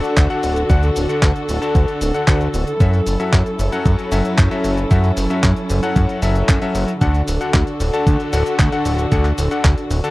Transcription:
Already playing: electric grand piano D3 D4 F#4 A4 F#5, string section D3 D4 F#4 A4
0.04 closed hi-hat, cabasa
0.17 analog synth bass D2, kick, clap, closed hi-hat, cabasa
0.30 electric grand piano D3 D4 F#4 A4 F#5, closed hi-hat, cabasa
0.43 analog synth bass D1, open hi-hat, cabasa
0.56 closed hi-hat, cabasa
0.70 analog synth bass D2, electric grand piano D3 D4 F#4 A4 F#5, kick, closed hi-hat, cabasa
0.83 closed hi-hat, cabasa
0.96 analog synth bass D1, open hi-hat, cabasa
1.09 electric grand piano D3 D4 F#4 A4 F#5, closed hi-hat, cabasa
1.22 analog synth bass D2, kick, clap, closed hi-hat, cabasa
1.36 closed hi-hat, cabasa
1.49 analog synth bass D1, open hi-hat, cabasa
1.62 electric grand piano D3 D4 F#4 A4 A5, closed hi-hat, cabasa
1.75 analog synth bass D2, kick, closed hi-hat, cabasa
1.88 closed hi-hat, cabasa
2.01 analog synth bass D1, open hi-hat, cabasa
2.14 electric grand piano D3 D4 F#4 A4 F#5, closed hi-hat, cabasa
2.28 analog synth bass D2, electric grand piano D3 D4 F#4 A4 F#5, kick, clap, closed hi-hat, cabasa
2.41 closed hi-hat, cabasa
2.54 analog synth bass D1, open hi-hat, cabasa
2.67 closed hi-hat, cabasa
2.80 analog synth bass F#2, electric grand piano F#3 C#4 F#4 A4 E5, string section F#3 C#4 E4, kick, closed hi-hat, cabasa
2.94 closed hi-hat, cabasa
3.07 analog synth bass F#1, open hi-hat, cabasa
3.20 electric grand piano F#3 C#4 F#4 A4 E5, closed hi-hat, cabasa
3.33 analog synth bass F#2, kick, clap, closed hi-hat, cabasa
3.46 closed hi-hat, cabasa
3.59 analog synth bass F#1, open hi-hat, cabasa
3.72 electric grand piano F#3 C#4 F#4 A4 F#5, closed hi-hat, cabasa
3.85 analog synth bass F#2, kick, closed hi-hat, cabasa
3.99 closed hi-hat, cabasa
4.12 analog synth bass F#1, electric grand piano F#3 C#4 F#4 A4 E5, open hi-hat, cabasa
4.25 closed hi-hat, cabasa
4.38 analog synth bass F#2, kick, clap, closed hi-hat, cabasa
4.51 electric grand piano F#3 C#4 F#4 A4 E5, closed hi-hat, cabasa
4.64 analog synth bass F#1, open hi-hat, cabasa
4.77 closed hi-hat, cabasa
4.91 analog synth bass F#2, electric grand piano F#3 C#4 F#4 A4 E5, kick, closed hi-hat, cabasa
5.04 closed hi-hat, cabasa
5.17 analog synth bass F#1, open hi-hat, cabasa
5.30 electric grand piano F#3 C#4 F#4 A4 E5, cabasa
5.43 analog synth bass F#2, kick, clap, closed hi-hat, cabasa
5.56 closed hi-hat, cabasa
5.70 analog synth bass F#1, open hi-hat, cabasa
5.83 electric grand piano F#3 C#4 F#4 A4 F#5, closed hi-hat, cabasa
5.96 analog synth bass F#2, kick, closed hi-hat, cabasa
6.09 closed hi-hat, cabasa
6.22 analog synth bass F#1, electric grand piano F#3 C#4 F#4 A4 E5, open hi-hat, cabasa
6.35 closed hi-hat, cabasa
6.48 analog synth bass F#2, kick, clap, closed hi-hat, cabasa
6.62 electric grand piano F#3 C#4 F#4 A4 E5, closed hi-hat, cabasa
6.75 analog synth bass F#1, open hi-hat, cabasa
6.88 closed hi-hat, cabasa
7.01 analog synth bass D2, string section D3 D4 F#4 A4, electric grand piano D3 D4 F#4 A4 F#5, kick, closed hi-hat, cabasa
7.14 closed hi-hat, cabasa
7.28 analog synth bass D1, open hi-hat, cabasa
7.41 electric grand piano D3 D4 F#4 A4 F#5, closed hi-hat, cabasa
7.54 analog synth bass D2, kick, clap, closed hi-hat, cabasa
7.67 closed hi-hat, cabasa
7.80 analog synth bass D1, open hi-hat, cabasa
7.93 electric grand piano D3 D4 F#4 A4 A5, closed hi-hat, cabasa
8.07 analog synth bass D2, kick, closed hi-hat, cabasa
8.20 closed hi-hat, cabasa
8.33 analog synth bass D1, electric grand piano D3 D4 F#4 A4 F#5, open hi-hat, cabasa
8.46 closed hi-hat, cabasa
8.59 analog synth bass D2, kick, clap, closed hi-hat, cabasa
8.72 electric grand piano D3 D4 F#4 A4 F#5, closed hi-hat, cabasa
8.85 analog synth bass D1, open hi-hat, cabasa
8.99 closed hi-hat, cabasa
9.12 analog synth bass D2, electric grand piano D3 D4 F#4 A4 F#5, kick, closed hi-hat, cabasa
9.25 clap, closed hi-hat, cabasa
9.38 analog synth bass D1, open hi-hat, cabasa
9.51 electric grand piano D3 D4 F#4 A4 F#5, closed hi-hat, cabasa
9.64 analog synth bass D2, kick, clap, closed hi-hat, cabasa
9.78 closed hi-hat, cabasa
9.91 analog synth bass D1, open hi-hat, cabasa
10.04 electric grand piano D3 D4 F#4 A4 A5, closed hi-hat, cabasa

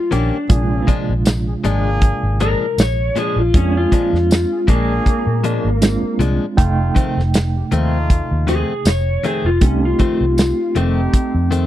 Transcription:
Already playing: reed electric piano G3 A#3 F4 C#5, clean electric guitar F4
0.11 fingered electric bass A#1, clean electric guitar D#3 A#3 C#4 D4 G4, closed hi-hat
0.49 fingered electric bass A#1, reed electric piano C3 G#3 D4 F4, horn section A#3 D4 G#4, kick, closed hi-hat
0.87 clean electric guitar A#2 F3 G#3 D4, kick, closed hi-hat
1.09 fingered electric bass A#1
1.25 snare, closed hi-hat, tambourine
1.45 horn section D4 G#4
1.63 fingered electric bass G#1, clean electric guitar A#2 F3 G#3 D4, horn section A#3 D4 G#4, closed hi-hat
2.02 kick, closed hi-hat
2.23 fingered electric bass G#1
2.40 clean electric guitar A#2 F3 G#3 D4 A#4, closed hi-hat
2.78 fingered electric bass A#1, clean electric guitar C#5, snare, closed hi-hat, tambourine
3.16 clean electric guitar A#2 F3 G#3 D4 G#4, closed hi-hat
3.36 fingered electric bass A#1, clean electric guitar F4
3.54 fingered electric bass F2, reed electric piano G#3 C4 D4 F4, horn section A#3 D4 G#4, clean electric guitar C#4, kick, closed hi-hat
3.77 clean electric guitar F4
3.92 clean electric guitar A#2 F3 G#3 D4, kick, closed hi-hat
4.13 fingered electric bass F2, snare
4.31 snare, closed hi-hat, tambourine
4.51 horn section D4 G#4
4.68 fingered electric bass A#1, clean electric guitar A#2 F3 G#3 A#3 D4, horn section A#3 D4 G#4, kick, closed hi-hat
5.06 kick, closed hi-hat
5.27 fingered electric bass A#2
5.44 clean electric guitar A#2 F3 G#3 D4, closed hi-hat
5.65 fingered electric bass G#1
5.82 reed electric piano G#3 C4 D4 F4, snare, closed hi-hat, tambourine
6.03 muted fingered electric bass stroke
6.19 fingered electric bass C2, clean electric guitar A#2 F3 G#3 D4, closed hi-hat
6.57 fingered electric bass F1, reed electric piano C3 A3 D#4 G5, horn section A3 D#4 F4, kick, closed hi-hat
6.95 clean electric guitar F2 D#3 A3 C4, kick, closed hi-hat
7.17 fingered electric bass F1, snare
7.34 snare, closed hi-hat, tambourine
7.55 horn section D#4 G4
7.71 fingered electric bass D#2, clean electric guitar F2 D#3 A3 C4, horn section A3 D#4 F4, closed hi-hat
8.10 kick, closed hi-hat
8.31 fingered electric bass D#2
8.47 clean electric guitar F2 D#3 A3 C4 G#4, closed hi-hat
8.85 fingered electric bass F1, clean electric guitar C#5, snare, closed hi-hat, tambourine
9.24 clean electric guitar F2 D#3 A3 C4 G#4, closed hi-hat
9.45 fingered electric bass F1, clean electric guitar F4
9.61 fingered electric bass C2, reed electric piano A3 C4 D#4 G4, horn section A3 D#4 F4, clean electric guitar C#4, kick, closed hi-hat
9.85 clean electric guitar F4
9.99 clean electric guitar F2 D#3 A3 C4, kick, closed hi-hat
10.21 fingered electric bass C2
10.38 snare, closed hi-hat, tambourine
10.60 horn section D#4 F4
10.75 fingered electric bass F1, clean electric guitar F2 D#3 A3 C4, horn section A3 D#4 G4, closed hi-hat
11.14 kick, closed hi-hat
11.35 fingered electric bass F2
11.51 clean electric guitar F2 D#3 A3 C4, closed hi-hat

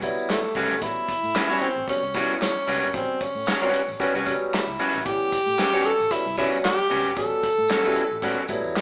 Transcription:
Already playing: fingered electric bass C2
0.02 tine electric piano F#3 G3 B3 E4, kick, closed hi-hat, tambourine
0.18 tambourine
0.29 tenor saxophone A3, snare, clap, closed hi-hat, tambourine
0.55 fingered electric bass C#2, clean electric guitar G3 C#4 F#4 B4, kick, open hi-hat, tambourine
0.70 fingered electric bass G1, closed hi-hat, tambourine
0.81 fingered electric bass A1, tine electric piano F#3 G3 B3 E4, tenor saxophone E4, kick, closed hi-hat, tambourine
1.09 muted fingered electric bass stroke, kick, closed hi-hat, tambourine
1.23 fingered electric bass A2, tambourine
1.34 clean electric guitar G3 C#4 F#4 B4, snare, clap, closed hi-hat, tambourine
1.50 tine electric piano F#3 G3 B3 E4, clean electric guitar G3 C#4 F#4 C#5, tambourine
1.61 tenor saxophone C4, muted fingered electric bass stroke, closed hi-hat
1.76 fingered electric bass A1
1.88 tine electric piano F#3 G3 B3 C#4, tenor saxophone C#4, muted fingered electric bass stroke, kick, closed hi-hat, tambourine
2.02 fingered electric bass C2, closed hi-hat
2.14 tine electric piano F#3 G3 B3 E4, clean electric guitar G3 C#4 F#4 B4, kick, closed hi-hat, tambourine
2.41 tenor saxophone C#4, snare, clap, closed hi-hat, tambourine
2.67 fingered electric bass C#2, clean electric guitar G3 C#4 F#4 B4, open hi-hat, tambourine
2.82 fingered electric bass G1
2.94 fingered electric bass A1, tine electric piano F#3 G3 B3 C#4, tenor saxophone C4, kick, closed hi-hat, tambourine
3.21 tenor saxophone C#4, muted fingered electric bass stroke, kick, closed hi-hat, tambourine
3.35 fingered electric bass A2, tambourine
3.46 clean electric guitar G3 C#4 F#4 C#5, snare, clap, closed hi-hat, tambourine
3.61 tine electric piano F#3 G3 B3 C#4, clean electric guitar G3 C#4 F#4 B4, tambourine
3.73 muted fingered electric bass stroke, closed hi-hat
3.88 fingered electric bass A1, tambourine
4.00 tine electric piano F#3 G3 B3 C#4, clean electric guitar G3 C#4 F#4 B4, muted fingered electric bass stroke, kick, closed hi-hat, tambourine
4.15 fingered electric bass C2, clean electric guitar G3 C#4 F#4 B4, closed hi-hat
4.26 tine electric piano F#3 G3 B3 C#4, kick, closed hi-hat, tambourine
4.53 tenor saxophone E4, snare, clap, closed hi-hat, tambourine
4.67 fingered electric bass C#2
4.79 clean electric guitar G3 C#4 F#4 B4, open hi-hat, tambourine
4.94 fingered electric bass A1
5.05 fingered electric bass A1, tine electric piano E3 G3 B3 C#4, tenor saxophone G4, kick, closed hi-hat, tambourine
5.32 muted fingered electric bass stroke, kick, closed hi-hat, tambourine
5.46 fingered electric bass A2, tambourine
5.58 clean electric guitar G3 C#4 F#4 B4, snare, clap, closed hi-hat, tambourine
5.73 tine electric piano F#3 G3 B3 C#4, clean electric guitar G3 C#4 F#4 C#5, tambourine
5.84 tenor saxophone A4, muted fingered electric bass stroke, closed hi-hat
5.99 fingered electric bass A1, tambourine
6.11 tine electric piano F#3 G3 B3 C#4, tenor saxophone E4, muted fingered electric bass stroke, kick, closed hi-hat, tambourine
6.26 fingered electric bass C2, closed hi-hat
6.37 tine electric piano F#3 G3 B3 C#4, clean electric guitar G3 C#4 F#4 B4, tenor saxophone E4, kick, closed hi-hat, tambourine
6.52 tambourine
6.64 tenor saxophone G4, snare, clap, closed hi-hat, tambourine
6.90 fingered electric bass C#2, clean electric guitar G3 C#4 F#4 B4, open hi-hat, tambourine
7.05 fingered electric bass G1
7.16 fingered electric bass A1, tine electric piano F#3 G3 B3 C#4, tenor saxophone A4, kick, closed hi-hat, tambourine
7.43 muted fingered electric bass stroke, kick, closed hi-hat, tambourine
7.58 fingered electric bass A2
7.68 clean electric guitar G3 C#4 F#4 C#5, snare, clap, closed hi-hat, tambourine
7.83 tine electric piano F#3 G3 B3 E4, clean electric guitar G3 C#4 F#4 B4, tambourine
7.96 muted fingered electric bass stroke, closed hi-hat
8.11 fingered electric bass A1
8.22 fingered electric bass A2, tine electric piano F#3 G3 B3 C#4, clean electric guitar G3 C#4 F#4 B4, kick, closed hi-hat, tambourine
8.38 closed hi-hat
8.48 fingered electric bass A2, tine electric piano F#3 G3 B3 E4, kick, closed hi-hat, tambourine
8.64 fingered electric bass E2, tambourine
8.75 tenor saxophone A3, snare, clap, closed hi-hat, tambourine

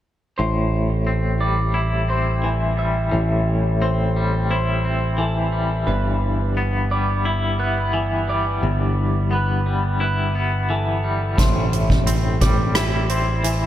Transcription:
0.38 picked electric bass A1, clean electric guitar A2 C5
1.07 clean electric guitar C4
1.40 clean electric guitar G3 D5
1.74 clean electric guitar E4
2.08 clean electric guitar C4 C5
2.44 clean electric guitar E3
2.77 clean electric guitar G3 E5
3.12 picked electric bass A1, clean electric guitar A2
3.82 clean electric guitar C4 C5
4.16 clean electric guitar G3
4.50 clean electric guitar E4 C5
4.85 clean electric guitar C4
5.18 clean electric guitar E3 A4
5.52 clean electric guitar G3
5.87 picked electric bass G1, clean electric guitar G2 B4
6.57 clean electric guitar B3
6.91 clean electric guitar G3 D5
7.25 clean electric guitar E4
7.59 clean electric guitar B3 B4
7.93 clean electric guitar E3
8.28 clean electric guitar G3 D5
8.63 picked electric bass G1, clean electric guitar G2
9.31 clean electric guitar B3 B4
9.66 clean electric guitar G3
10.00 clean electric guitar E4 B4
10.35 clean electric guitar B3
10.70 clean electric guitar E3 A4
11.04 clean electric guitar G3
11.38 picked electric bass A1, clean electric guitar A2 C5, kick, closed hi-hat
11.73 closed hi-hat
11.90 kick
12.07 clean electric guitar C4, closed hi-hat
12.41 clean electric guitar G3 D5, kick, closed hi-hat
12.75 clean electric guitar E4, cross-stick, closed hi-hat
13.09 clean electric guitar C4 C5, closed hi-hat
13.44 clean electric guitar E3, closed hi-hat

